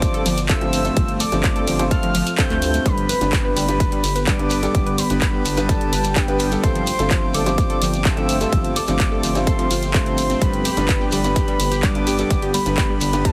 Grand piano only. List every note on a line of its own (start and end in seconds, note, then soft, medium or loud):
0.00 0.23 G2 medium
0.00 0.23 A3 medium
0.00 0.23 C4 medium
0.00 0.23 F4 medium
0.00 0.23 A4 medium
0.00 0.23 C5 loud
0.49 0.58 G2 medium
0.49 0.58 A3 medium
0.49 0.58 C4 medium
0.49 0.58 F4 medium
0.49 0.58 A4 medium
0.49 0.58 C5 medium
0.61 0.81 G2 loud
0.61 0.81 A3 medium
0.61 0.81 C4 medium
0.61 0.81 F4 medium
0.61 0.81 A4 medium
0.61 0.81 C5 loud
0.85 0.95 G2 medium
0.85 0.95 A3 medium
0.85 0.95 C4 medium
0.85 0.95 F4 medium
0.85 0.95 A4 medium
0.85 0.95 C5 loud
0.97 1.16 G2 medium
0.97 1.16 A3 medium
0.97 1.16 C4 medium
0.97 1.16 A4 medium
0.97 1.16 C5 medium
1.32 1.77 G2 medium
1.32 1.77 A3 medium
1.32 1.77 C4 medium
1.32 1.77 F4 medium
1.32 1.77 A4 medium
1.32 1.77 C5 medium
1.79 2.12 G2 medium
1.79 2.12 A3 medium
1.79 2.12 C4 medium
1.79 2.12 F4 medium
1.79 2.12 A4 medium
1.79 2.12 C5 loud
2.38 2.83 G2 loud
2.38 2.83 A3 medium
2.38 2.83 C4 medium
2.38 2.83 F4 medium
2.38 2.83 A4 medium
2.38 2.83 C5 loud
2.86 3.05 G3 medium
2.86 3.05 B3 medium
2.86 3.05 D4 medium
2.86 3.05 G4 medium
2.86 3.05 B4 medium
3.21 3.66 G2 medium
3.21 3.66 G3 medium
3.21 3.66 B3 medium
3.21 3.66 D4 medium
3.21 3.66 G4 medium
3.21 3.66 B4 medium
3.68 4.01 G2 medium
3.68 4.01 G3 medium
3.68 4.01 B3 medium
3.68 4.01 D4 medium
3.68 4.01 G4 medium
3.68 4.01 B4 loud
4.27 4.36 G2 medium
4.27 4.36 G3 medium
4.27 4.36 B3 medium
4.27 4.36 D4 medium
4.27 4.36 G4 medium
4.27 4.36 B4 medium
4.39 4.59 G2 loud
4.39 4.59 G3 medium
4.39 4.59 B3 medium
4.39 4.59 D4 medium
4.39 4.59 G4 medium
4.39 4.59 B4 loud
4.63 4.73 G2 medium
4.63 4.73 G3 medium
4.63 4.73 B3 medium
4.63 4.73 D4 medium
4.63 4.73 G4 medium
4.63 4.73 A4 loud
4.75 4.94 B3 medium
4.75 4.94 D4 medium
4.75 4.94 G4 medium
4.75 4.94 B4 medium
5.10 5.55 G2 medium
5.10 5.55 G3 medium
5.10 5.55 B3 medium
5.10 5.55 D4 medium
5.10 5.55 G4 medium
5.10 5.55 B4 medium
5.57 5.90 G2 medium
5.57 5.90 G3 medium
5.57 5.90 B3 medium
5.57 5.90 D4 medium
5.57 5.90 G4 medium
5.57 5.90 B4 loud
6.16 6.25 G2 medium
6.16 6.25 G3 medium
6.16 6.25 B3 medium
6.16 6.25 D4 medium
6.16 6.25 G4 medium
6.16 6.25 B4 loud
6.28 6.48 G2 loud
6.28 6.48 G3 medium
6.28 6.48 B3 medium
6.28 6.48 D4 medium
6.28 6.48 G4 medium
6.28 6.48 B4 loud
6.52 6.62 G3 medium
6.52 6.62 B3 medium
6.52 6.62 D4 medium
6.52 6.62 G4 medium
6.52 6.62 A4 loud
6.64 6.83 G2 medium
6.64 6.83 A3 medium
6.64 6.83 C4 medium
6.64 6.83 F4 medium
6.64 6.83 A4 medium
6.64 6.83 C5 medium
6.99 7.43 G2 medium
6.99 7.43 A3 medium
6.99 7.43 C4 medium
6.99 7.43 F4 medium
6.99 7.43 A4 medium
6.99 7.43 C5 medium
7.46 7.79 G2 medium
7.46 7.79 A3 medium
7.46 7.79 C4 medium
7.46 7.79 F4 medium
7.46 7.79 A4 medium
7.46 7.79 C5 loud
8.05 8.14 G2 medium
8.05 8.14 A3 medium
8.05 8.14 C4 medium
8.05 8.14 F4 medium
8.05 8.14 A4 medium
8.05 8.14 C5 medium
8.17 8.37 G2 loud
8.17 8.37 A3 medium
8.17 8.37 C4 medium
8.17 8.37 F4 medium
8.17 8.37 A4 medium
8.17 8.37 C5 loud
8.41 8.51 G2 medium
8.41 8.51 A3 medium
8.41 8.51 C4 medium
8.41 8.51 F4 medium
8.41 8.51 A4 medium
8.41 8.51 C5 loud
8.53 8.72 A3 medium
8.53 8.72 C4 medium
8.53 8.72 F4 medium
8.53 8.72 C5 medium
8.88 9.32 G2 medium
8.88 9.32 A3 medium
8.88 9.32 C4 medium
8.88 9.32 F4 medium
8.88 9.32 A4 medium
8.88 9.32 C5 medium
9.35 9.68 G2 medium
9.35 9.68 A3 medium
9.35 9.68 C4 medium
9.35 9.68 F4 medium
9.35 9.68 A4 medium
9.35 9.68 C5 loud
9.94 10.39 G2 loud
9.94 10.39 A3 medium
9.94 10.39 C4 medium
9.94 10.39 F4 medium
9.94 10.39 A4 medium
9.94 10.39 C5 loud
10.42 10.61 G2 medium
10.42 10.61 G3 medium
10.42 10.61 B3 medium
10.42 10.61 D4 medium
10.42 10.61 G4 medium
10.42 10.61 B4 medium
10.77 11.21 G2 medium
10.77 11.21 G3 medium
10.77 11.21 B3 medium
10.77 11.21 D4 medium
10.77 11.21 G4 medium
10.77 11.21 B4 medium
11.24 11.57 G2 medium
11.24 11.57 G3 medium
11.24 11.57 B3 medium
11.24 11.57 D4 medium
11.24 11.57 G4 medium
11.24 11.57 B4 loud
11.83 11.92 G2 medium
11.83 11.92 G3 medium
11.83 11.92 B3 medium
11.83 11.92 D4 medium
11.83 11.92 G4 medium
11.83 11.92 B4 medium
11.95 12.15 G2 loud
11.95 12.15 G3 medium
11.95 12.15 B3 medium
11.95 12.15 D4 medium
11.95 12.15 G4 medium
11.95 12.15 B4 loud
12.19 12.29 G2 medium
12.19 12.29 G3 medium
12.19 12.29 B3 medium
12.19 12.29 D4 medium
12.19 12.29 G4 medium
12.19 12.29 A4 loud
12.31 12.50 G3 medium
12.31 12.50 B3 medium
12.31 12.50 D4 medium
12.31 12.50 G4 medium
12.31 12.50 B4 medium
12.66 13.10 G2 medium
12.66 13.10 G3 medium
12.66 13.10 B3 medium
12.66 13.10 D4 medium
12.66 13.10 G4 medium
12.66 13.10 B4 medium
13.13 13.32 G2 medium
13.13 13.32 G3 medium
13.13 13.32 B3 medium
13.13 13.32 D4 medium
13.13 13.32 G4 medium
13.13 13.32 B4 loud